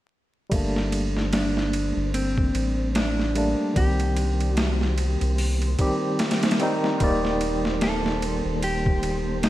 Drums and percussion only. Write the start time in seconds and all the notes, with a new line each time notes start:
0.52 kick, ride
0.76 snare
0.92 ride
1.17 snare
1.33 snare, ride
1.57 snare
1.73 ride
2.14 ride
2.38 kick
2.55 ride
2.95 snare, ride
3.19 snare
3.35 ride
3.76 kick, ride
4.00 ride
4.17 ride
4.41 ride
4.57 snare, ride
4.81 snare
4.98 ride
5.21 ride
5.38 open hi-hat
5.62 ride
5.79 kick, ride
6.19 snare, ride
6.31 snare, ride
6.43 snare, ride
6.51 snare, ride
6.60 ride
6.84 snare
7.00 kick, ride
7.25 snare
7.41 ride
7.65 snare
7.81 snare, ride
8.06 snare
8.22 ride
8.62 ride
8.86 kick
9.03 ride
9.43 snare, ride